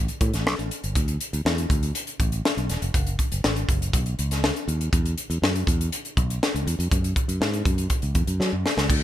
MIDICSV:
0, 0, Header, 1, 3, 480
1, 0, Start_track
1, 0, Tempo, 496689
1, 921, Time_signature, 4, 2, 24, 8
1, 8729, End_track
2, 0, Start_track
2, 0, Title_t, "Fingered electric bass"
2, 0, Program_c, 0, 33
2, 201, Note_on_c, 0, 45, 84
2, 301, Note_off_c, 0, 45, 0
2, 326, Note_on_c, 0, 33, 79
2, 450, Note_off_c, 0, 33, 0
2, 450, Note_on_c, 0, 35, 79
2, 546, Note_off_c, 0, 35, 0
2, 571, Note_on_c, 0, 33, 70
2, 666, Note_off_c, 0, 33, 0
2, 810, Note_on_c, 0, 31, 77
2, 906, Note_off_c, 0, 31, 0
2, 924, Note_on_c, 0, 38, 90
2, 1121, Note_off_c, 0, 38, 0
2, 1286, Note_on_c, 0, 38, 75
2, 1384, Note_off_c, 0, 38, 0
2, 1403, Note_on_c, 0, 40, 80
2, 1601, Note_off_c, 0, 40, 0
2, 1641, Note_on_c, 0, 38, 84
2, 1840, Note_off_c, 0, 38, 0
2, 2124, Note_on_c, 0, 33, 73
2, 2321, Note_off_c, 0, 33, 0
2, 2485, Note_on_c, 0, 35, 68
2, 2583, Note_off_c, 0, 35, 0
2, 2604, Note_on_c, 0, 28, 77
2, 2702, Note_off_c, 0, 28, 0
2, 2726, Note_on_c, 0, 29, 78
2, 2823, Note_off_c, 0, 29, 0
2, 2844, Note_on_c, 0, 30, 92
2, 3041, Note_off_c, 0, 30, 0
2, 3208, Note_on_c, 0, 30, 76
2, 3305, Note_off_c, 0, 30, 0
2, 3329, Note_on_c, 0, 32, 85
2, 3524, Note_off_c, 0, 32, 0
2, 3563, Note_on_c, 0, 30, 81
2, 3761, Note_off_c, 0, 30, 0
2, 3803, Note_on_c, 0, 35, 83
2, 4001, Note_off_c, 0, 35, 0
2, 4050, Note_on_c, 0, 37, 71
2, 4344, Note_off_c, 0, 37, 0
2, 4519, Note_on_c, 0, 39, 86
2, 4718, Note_off_c, 0, 39, 0
2, 4761, Note_on_c, 0, 40, 82
2, 4960, Note_off_c, 0, 40, 0
2, 5119, Note_on_c, 0, 40, 82
2, 5219, Note_off_c, 0, 40, 0
2, 5239, Note_on_c, 0, 42, 73
2, 5438, Note_off_c, 0, 42, 0
2, 5483, Note_on_c, 0, 40, 89
2, 5681, Note_off_c, 0, 40, 0
2, 5963, Note_on_c, 0, 35, 89
2, 6161, Note_off_c, 0, 35, 0
2, 6325, Note_on_c, 0, 37, 69
2, 6422, Note_off_c, 0, 37, 0
2, 6443, Note_on_c, 0, 40, 91
2, 6541, Note_off_c, 0, 40, 0
2, 6560, Note_on_c, 0, 41, 86
2, 6659, Note_off_c, 0, 41, 0
2, 6684, Note_on_c, 0, 42, 102
2, 6881, Note_off_c, 0, 42, 0
2, 7038, Note_on_c, 0, 42, 73
2, 7138, Note_off_c, 0, 42, 0
2, 7158, Note_on_c, 0, 44, 85
2, 7358, Note_off_c, 0, 44, 0
2, 7398, Note_on_c, 0, 42, 84
2, 7597, Note_off_c, 0, 42, 0
2, 7759, Note_on_c, 0, 37, 73
2, 7858, Note_off_c, 0, 37, 0
2, 7876, Note_on_c, 0, 40, 74
2, 7977, Note_off_c, 0, 40, 0
2, 7996, Note_on_c, 0, 42, 72
2, 8097, Note_off_c, 0, 42, 0
2, 8116, Note_on_c, 0, 54, 91
2, 8217, Note_off_c, 0, 54, 0
2, 8240, Note_on_c, 0, 42, 72
2, 8339, Note_off_c, 0, 42, 0
2, 8477, Note_on_c, 0, 37, 80
2, 8577, Note_off_c, 0, 37, 0
2, 8599, Note_on_c, 0, 38, 86
2, 8729, Note_off_c, 0, 38, 0
2, 8729, End_track
3, 0, Start_track
3, 0, Title_t, "Drums"
3, 81, Note_on_c, 9, 42, 42
3, 177, Note_off_c, 9, 42, 0
3, 200, Note_on_c, 9, 42, 58
3, 201, Note_on_c, 9, 36, 78
3, 297, Note_off_c, 9, 42, 0
3, 298, Note_off_c, 9, 36, 0
3, 324, Note_on_c, 9, 42, 46
3, 329, Note_on_c, 9, 38, 28
3, 420, Note_off_c, 9, 42, 0
3, 426, Note_off_c, 9, 38, 0
3, 452, Note_on_c, 9, 38, 97
3, 549, Note_off_c, 9, 38, 0
3, 571, Note_on_c, 9, 42, 45
3, 668, Note_off_c, 9, 42, 0
3, 689, Note_on_c, 9, 42, 65
3, 786, Note_off_c, 9, 42, 0
3, 808, Note_on_c, 9, 42, 44
3, 905, Note_off_c, 9, 42, 0
3, 922, Note_on_c, 9, 36, 87
3, 925, Note_on_c, 9, 42, 76
3, 1019, Note_off_c, 9, 36, 0
3, 1022, Note_off_c, 9, 42, 0
3, 1043, Note_on_c, 9, 42, 46
3, 1139, Note_off_c, 9, 42, 0
3, 1165, Note_on_c, 9, 42, 60
3, 1261, Note_off_c, 9, 42, 0
3, 1289, Note_on_c, 9, 42, 49
3, 1385, Note_off_c, 9, 42, 0
3, 1412, Note_on_c, 9, 38, 103
3, 1509, Note_off_c, 9, 38, 0
3, 1529, Note_on_c, 9, 42, 53
3, 1625, Note_off_c, 9, 42, 0
3, 1642, Note_on_c, 9, 36, 86
3, 1650, Note_on_c, 9, 42, 73
3, 1738, Note_off_c, 9, 36, 0
3, 1747, Note_off_c, 9, 42, 0
3, 1766, Note_on_c, 9, 42, 45
3, 1863, Note_off_c, 9, 42, 0
3, 1884, Note_on_c, 9, 42, 81
3, 1981, Note_off_c, 9, 42, 0
3, 2000, Note_on_c, 9, 42, 41
3, 2097, Note_off_c, 9, 42, 0
3, 2123, Note_on_c, 9, 36, 74
3, 2123, Note_on_c, 9, 42, 58
3, 2219, Note_off_c, 9, 36, 0
3, 2220, Note_off_c, 9, 42, 0
3, 2243, Note_on_c, 9, 42, 47
3, 2340, Note_off_c, 9, 42, 0
3, 2372, Note_on_c, 9, 38, 102
3, 2468, Note_off_c, 9, 38, 0
3, 2491, Note_on_c, 9, 42, 44
3, 2588, Note_off_c, 9, 42, 0
3, 2604, Note_on_c, 9, 42, 61
3, 2612, Note_on_c, 9, 38, 30
3, 2701, Note_off_c, 9, 42, 0
3, 2708, Note_off_c, 9, 38, 0
3, 2726, Note_on_c, 9, 42, 42
3, 2822, Note_off_c, 9, 42, 0
3, 2843, Note_on_c, 9, 36, 85
3, 2845, Note_on_c, 9, 42, 75
3, 2940, Note_off_c, 9, 36, 0
3, 2941, Note_off_c, 9, 42, 0
3, 2963, Note_on_c, 9, 42, 48
3, 3060, Note_off_c, 9, 42, 0
3, 3082, Note_on_c, 9, 36, 70
3, 3082, Note_on_c, 9, 42, 60
3, 3179, Note_off_c, 9, 36, 0
3, 3179, Note_off_c, 9, 42, 0
3, 3206, Note_on_c, 9, 42, 51
3, 3302, Note_off_c, 9, 42, 0
3, 3326, Note_on_c, 9, 38, 98
3, 3423, Note_off_c, 9, 38, 0
3, 3445, Note_on_c, 9, 42, 50
3, 3541, Note_off_c, 9, 42, 0
3, 3562, Note_on_c, 9, 36, 85
3, 3570, Note_on_c, 9, 42, 69
3, 3659, Note_off_c, 9, 36, 0
3, 3667, Note_off_c, 9, 42, 0
3, 3691, Note_on_c, 9, 42, 45
3, 3788, Note_off_c, 9, 42, 0
3, 3802, Note_on_c, 9, 36, 78
3, 3806, Note_on_c, 9, 42, 80
3, 3899, Note_off_c, 9, 36, 0
3, 3902, Note_off_c, 9, 42, 0
3, 3922, Note_on_c, 9, 42, 41
3, 4019, Note_off_c, 9, 42, 0
3, 4046, Note_on_c, 9, 42, 58
3, 4143, Note_off_c, 9, 42, 0
3, 4167, Note_on_c, 9, 42, 43
3, 4172, Note_on_c, 9, 38, 28
3, 4263, Note_off_c, 9, 42, 0
3, 4268, Note_off_c, 9, 38, 0
3, 4290, Note_on_c, 9, 38, 104
3, 4386, Note_off_c, 9, 38, 0
3, 4410, Note_on_c, 9, 42, 45
3, 4507, Note_off_c, 9, 42, 0
3, 4528, Note_on_c, 9, 42, 61
3, 4624, Note_off_c, 9, 42, 0
3, 4647, Note_on_c, 9, 42, 42
3, 4743, Note_off_c, 9, 42, 0
3, 4762, Note_on_c, 9, 36, 87
3, 4765, Note_on_c, 9, 42, 78
3, 4858, Note_off_c, 9, 36, 0
3, 4862, Note_off_c, 9, 42, 0
3, 4886, Note_on_c, 9, 42, 46
3, 4982, Note_off_c, 9, 42, 0
3, 5002, Note_on_c, 9, 42, 60
3, 5098, Note_off_c, 9, 42, 0
3, 5126, Note_on_c, 9, 42, 46
3, 5223, Note_off_c, 9, 42, 0
3, 5253, Note_on_c, 9, 38, 105
3, 5350, Note_off_c, 9, 38, 0
3, 5368, Note_on_c, 9, 42, 54
3, 5465, Note_off_c, 9, 42, 0
3, 5481, Note_on_c, 9, 36, 86
3, 5491, Note_on_c, 9, 42, 71
3, 5578, Note_off_c, 9, 36, 0
3, 5588, Note_off_c, 9, 42, 0
3, 5613, Note_on_c, 9, 42, 45
3, 5710, Note_off_c, 9, 42, 0
3, 5726, Note_on_c, 9, 42, 76
3, 5822, Note_off_c, 9, 42, 0
3, 5846, Note_on_c, 9, 42, 41
3, 5942, Note_off_c, 9, 42, 0
3, 5964, Note_on_c, 9, 36, 85
3, 5967, Note_on_c, 9, 42, 57
3, 6060, Note_off_c, 9, 36, 0
3, 6064, Note_off_c, 9, 42, 0
3, 6092, Note_on_c, 9, 42, 47
3, 6188, Note_off_c, 9, 42, 0
3, 6214, Note_on_c, 9, 38, 100
3, 6310, Note_off_c, 9, 38, 0
3, 6336, Note_on_c, 9, 42, 44
3, 6433, Note_off_c, 9, 42, 0
3, 6451, Note_on_c, 9, 42, 62
3, 6547, Note_off_c, 9, 42, 0
3, 6569, Note_on_c, 9, 42, 44
3, 6666, Note_off_c, 9, 42, 0
3, 6683, Note_on_c, 9, 36, 93
3, 6687, Note_on_c, 9, 42, 80
3, 6779, Note_off_c, 9, 36, 0
3, 6783, Note_off_c, 9, 42, 0
3, 6806, Note_on_c, 9, 42, 50
3, 6903, Note_off_c, 9, 42, 0
3, 6920, Note_on_c, 9, 36, 76
3, 6923, Note_on_c, 9, 42, 56
3, 7017, Note_off_c, 9, 36, 0
3, 7020, Note_off_c, 9, 42, 0
3, 7043, Note_on_c, 9, 42, 50
3, 7140, Note_off_c, 9, 42, 0
3, 7167, Note_on_c, 9, 38, 102
3, 7264, Note_off_c, 9, 38, 0
3, 7282, Note_on_c, 9, 42, 52
3, 7378, Note_off_c, 9, 42, 0
3, 7397, Note_on_c, 9, 36, 90
3, 7403, Note_on_c, 9, 42, 68
3, 7494, Note_off_c, 9, 36, 0
3, 7500, Note_off_c, 9, 42, 0
3, 7518, Note_on_c, 9, 42, 50
3, 7615, Note_off_c, 9, 42, 0
3, 7633, Note_on_c, 9, 42, 75
3, 7636, Note_on_c, 9, 36, 81
3, 7729, Note_off_c, 9, 42, 0
3, 7732, Note_off_c, 9, 36, 0
3, 7752, Note_on_c, 9, 42, 42
3, 7848, Note_off_c, 9, 42, 0
3, 7874, Note_on_c, 9, 42, 54
3, 7877, Note_on_c, 9, 36, 78
3, 7971, Note_off_c, 9, 42, 0
3, 7974, Note_off_c, 9, 36, 0
3, 7997, Note_on_c, 9, 42, 49
3, 8093, Note_off_c, 9, 42, 0
3, 8124, Note_on_c, 9, 38, 47
3, 8221, Note_off_c, 9, 38, 0
3, 8365, Note_on_c, 9, 38, 73
3, 8462, Note_off_c, 9, 38, 0
3, 8482, Note_on_c, 9, 38, 77
3, 8579, Note_off_c, 9, 38, 0
3, 8597, Note_on_c, 9, 36, 92
3, 8600, Note_on_c, 9, 49, 87
3, 8694, Note_off_c, 9, 36, 0
3, 8696, Note_off_c, 9, 49, 0
3, 8729, End_track
0, 0, End_of_file